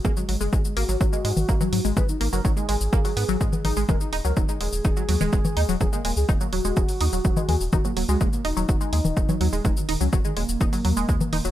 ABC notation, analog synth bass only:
X:1
M:4/4
L:1/16
Q:1/4=125
K:D#phr
V:1 name="Analog synth bass" clef=bass
G,,, z G,,, F,,, G,,, z G,,, G,,, G,,, z G,, G,,, G,,, z G,, G,,, | G,,, z G,,, F,,, G,,, z G,,, G,,, G,,, z G,, G,,, G,, z G,,, G,,, | D,,, z D,,, C,, D,,, z D,,, D,,, D,,, z D,, D,,, D,,, z D,, D,,, | D,,, z D,,, C,, D,,, z D,,, D,,, D,,, z D,, D,,, D,,, z D,, D,,, |
D,,, z D,,, C,, D,,, z D,,, D,,, D,,, z D,, D,,, D,,, z D,, D,,, | D,,, z D,,, C,, D,,, z D,,, D,,, D,,, z D,, D,,, D,, z D,,, D,,, |]